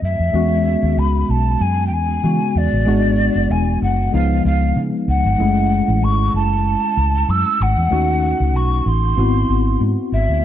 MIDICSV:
0, 0, Header, 1, 4, 480
1, 0, Start_track
1, 0, Key_signature, 4, "major"
1, 0, Tempo, 630915
1, 259, Time_signature, 4, 2, 24, 8
1, 7949, End_track
2, 0, Start_track
2, 0, Title_t, "Flute"
2, 0, Program_c, 0, 73
2, 26, Note_on_c, 0, 76, 84
2, 748, Note_on_c, 0, 83, 81
2, 759, Note_off_c, 0, 76, 0
2, 989, Note_on_c, 0, 81, 89
2, 1001, Note_off_c, 0, 83, 0
2, 1225, Note_on_c, 0, 80, 98
2, 1236, Note_off_c, 0, 81, 0
2, 1414, Note_off_c, 0, 80, 0
2, 1418, Note_on_c, 0, 79, 68
2, 1469, Note_on_c, 0, 80, 94
2, 1480, Note_off_c, 0, 79, 0
2, 1956, Note_on_c, 0, 74, 103
2, 1967, Note_off_c, 0, 80, 0
2, 2668, Note_on_c, 0, 80, 90
2, 2679, Note_off_c, 0, 74, 0
2, 2905, Note_off_c, 0, 80, 0
2, 2909, Note_on_c, 0, 78, 90
2, 3129, Note_off_c, 0, 78, 0
2, 3147, Note_on_c, 0, 77, 97
2, 3368, Note_off_c, 0, 77, 0
2, 3388, Note_on_c, 0, 77, 95
2, 3644, Note_off_c, 0, 77, 0
2, 3871, Note_on_c, 0, 78, 102
2, 4591, Note_on_c, 0, 85, 98
2, 4602, Note_off_c, 0, 78, 0
2, 4827, Note_off_c, 0, 85, 0
2, 4833, Note_on_c, 0, 81, 108
2, 5551, Note_on_c, 0, 88, 117
2, 5562, Note_off_c, 0, 81, 0
2, 5796, Note_on_c, 0, 78, 110
2, 5807, Note_off_c, 0, 88, 0
2, 6511, Note_on_c, 0, 85, 94
2, 6522, Note_off_c, 0, 78, 0
2, 6756, Note_on_c, 0, 84, 93
2, 6768, Note_off_c, 0, 85, 0
2, 7468, Note_off_c, 0, 84, 0
2, 7707, Note_on_c, 0, 76, 94
2, 7949, Note_off_c, 0, 76, 0
2, 7949, End_track
3, 0, Start_track
3, 0, Title_t, "Tine electric piano"
3, 0, Program_c, 1, 4
3, 0, Control_c, 1, 64, 127
3, 0, Note_on_c, 1, 51, 53
3, 0, Note_on_c, 1, 57, 59
3, 0, Note_on_c, 1, 60, 56
3, 0, Note_on_c, 1, 66, 68
3, 221, Note_off_c, 1, 57, 0
3, 224, Note_off_c, 1, 60, 0
3, 227, Note_off_c, 1, 51, 0
3, 229, Note_off_c, 1, 66, 0
3, 251, Note_on_c, 1, 56, 67
3, 258, Note_on_c, 1, 59, 62
3, 264, Note_on_c, 1, 61, 58
3, 269, Control_c, 1, 64, 0
3, 269, Note_on_c, 1, 66, 76
3, 390, Control_c, 1, 64, 127
3, 1669, Note_off_c, 1, 56, 0
3, 1672, Note_off_c, 1, 59, 0
3, 1675, Note_off_c, 1, 61, 0
3, 1678, Note_off_c, 1, 66, 0
3, 1701, Note_on_c, 1, 56, 50
3, 1703, Note_on_c, 1, 59, 46
3, 1707, Note_on_c, 1, 49, 49
3, 1709, Note_on_c, 1, 66, 59
3, 2166, Note_off_c, 1, 56, 0
3, 2171, Note_off_c, 1, 59, 0
3, 2175, Note_on_c, 1, 56, 71
3, 2180, Note_on_c, 1, 59, 64
3, 2183, Note_off_c, 1, 66, 0
3, 2185, Note_off_c, 1, 49, 0
3, 2186, Note_on_c, 1, 62, 61
3, 2192, Control_c, 1, 64, 0
3, 2192, Note_on_c, 1, 66, 75
3, 2316, Control_c, 1, 64, 127
3, 3120, Note_off_c, 1, 56, 0
3, 3123, Note_off_c, 1, 59, 0
3, 3125, Note_off_c, 1, 62, 0
3, 3128, Note_off_c, 1, 66, 0
3, 3136, Note_on_c, 1, 56, 66
3, 3141, Note_on_c, 1, 59, 61
3, 3148, Note_on_c, 1, 63, 61
3, 3153, Control_c, 1, 64, 0
3, 3155, Note_on_c, 1, 53, 73
3, 3279, Control_c, 1, 64, 127
3, 4080, Note_off_c, 1, 56, 0
3, 4083, Note_off_c, 1, 59, 0
3, 4086, Note_off_c, 1, 63, 0
3, 4090, Note_off_c, 1, 53, 0
3, 4093, Note_on_c, 1, 57, 66
3, 4099, Note_on_c, 1, 61, 60
3, 4106, Note_on_c, 1, 64, 64
3, 4112, Note_on_c, 1, 56, 73
3, 4113, Control_c, 1, 64, 0
3, 4243, Control_c, 1, 64, 127
3, 5987, Note_off_c, 1, 57, 0
3, 5989, Note_off_c, 1, 61, 0
3, 5993, Note_off_c, 1, 64, 0
3, 5996, Note_off_c, 1, 56, 0
3, 6010, Note_on_c, 1, 57, 67
3, 6017, Note_on_c, 1, 61, 58
3, 6021, Note_on_c, 1, 63, 61
3, 6028, Note_on_c, 1, 66, 76
3, 6032, Control_c, 1, 64, 0
3, 6173, Control_c, 1, 64, 127
3, 6956, Note_off_c, 1, 57, 0
3, 6959, Note_off_c, 1, 61, 0
3, 6962, Note_off_c, 1, 63, 0
3, 6965, Note_off_c, 1, 66, 0
3, 6973, Note_on_c, 1, 59, 63
3, 6978, Note_on_c, 1, 60, 58
3, 6987, Note_on_c, 1, 64, 58
3, 6990, Note_on_c, 1, 66, 71
3, 6991, Control_c, 1, 64, 0
3, 7117, Control_c, 1, 64, 127
3, 7917, Note_off_c, 1, 59, 0
3, 7919, Note_off_c, 1, 60, 0
3, 7924, Note_off_c, 1, 64, 0
3, 7926, Note_off_c, 1, 66, 0
3, 7949, End_track
4, 0, Start_track
4, 0, Title_t, "Fingered electric bass"
4, 0, Program_c, 2, 33
4, 17, Note_on_c, 2, 42, 76
4, 126, Note_off_c, 2, 42, 0
4, 147, Note_on_c, 2, 41, 79
4, 240, Note_off_c, 2, 41, 0
4, 257, Note_on_c, 2, 40, 102
4, 566, Note_off_c, 2, 40, 0
4, 629, Note_on_c, 2, 39, 87
4, 721, Note_off_c, 2, 39, 0
4, 740, Note_on_c, 2, 37, 92
4, 940, Note_off_c, 2, 37, 0
4, 980, Note_on_c, 2, 35, 93
4, 1180, Note_off_c, 2, 35, 0
4, 1220, Note_on_c, 2, 42, 100
4, 1461, Note_off_c, 2, 42, 0
4, 1461, Note_on_c, 2, 40, 93
4, 1661, Note_off_c, 2, 40, 0
4, 1702, Note_on_c, 2, 52, 99
4, 1810, Note_off_c, 2, 52, 0
4, 1942, Note_on_c, 2, 40, 95
4, 2050, Note_off_c, 2, 40, 0
4, 2072, Note_on_c, 2, 33, 84
4, 2164, Note_off_c, 2, 33, 0
4, 2181, Note_on_c, 2, 32, 104
4, 2489, Note_off_c, 2, 32, 0
4, 2552, Note_on_c, 2, 30, 85
4, 2644, Note_off_c, 2, 30, 0
4, 2663, Note_on_c, 2, 28, 94
4, 2863, Note_off_c, 2, 28, 0
4, 2907, Note_on_c, 2, 30, 98
4, 3105, Note_off_c, 2, 30, 0
4, 3146, Note_on_c, 2, 37, 103
4, 3344, Note_off_c, 2, 37, 0
4, 3385, Note_on_c, 2, 37, 91
4, 3584, Note_off_c, 2, 37, 0
4, 3624, Note_on_c, 2, 49, 103
4, 3732, Note_off_c, 2, 49, 0
4, 3863, Note_on_c, 2, 37, 87
4, 3971, Note_off_c, 2, 37, 0
4, 3993, Note_on_c, 2, 31, 98
4, 4084, Note_off_c, 2, 31, 0
4, 4105, Note_on_c, 2, 30, 111
4, 4412, Note_off_c, 2, 30, 0
4, 4474, Note_on_c, 2, 33, 79
4, 4565, Note_off_c, 2, 33, 0
4, 4584, Note_on_c, 2, 32, 93
4, 4783, Note_off_c, 2, 32, 0
4, 4823, Note_on_c, 2, 30, 92
4, 5130, Note_off_c, 2, 30, 0
4, 5304, Note_on_c, 2, 37, 84
4, 5503, Note_off_c, 2, 37, 0
4, 5544, Note_on_c, 2, 42, 101
4, 5651, Note_off_c, 2, 42, 0
4, 5785, Note_on_c, 2, 32, 87
4, 5891, Note_off_c, 2, 32, 0
4, 5912, Note_on_c, 2, 40, 92
4, 6004, Note_off_c, 2, 40, 0
4, 6022, Note_on_c, 2, 39, 105
4, 6329, Note_off_c, 2, 39, 0
4, 6392, Note_on_c, 2, 37, 82
4, 6501, Note_off_c, 2, 37, 0
4, 6501, Note_on_c, 2, 35, 95
4, 6700, Note_off_c, 2, 35, 0
4, 6740, Note_on_c, 2, 33, 91
4, 6940, Note_off_c, 2, 33, 0
4, 6978, Note_on_c, 2, 32, 118
4, 7179, Note_off_c, 2, 32, 0
4, 7217, Note_on_c, 2, 32, 87
4, 7418, Note_off_c, 2, 32, 0
4, 7458, Note_on_c, 2, 44, 98
4, 7567, Note_off_c, 2, 44, 0
4, 7700, Note_on_c, 2, 32, 82
4, 7808, Note_off_c, 2, 32, 0
4, 7828, Note_on_c, 2, 38, 84
4, 7921, Note_off_c, 2, 38, 0
4, 7949, End_track
0, 0, End_of_file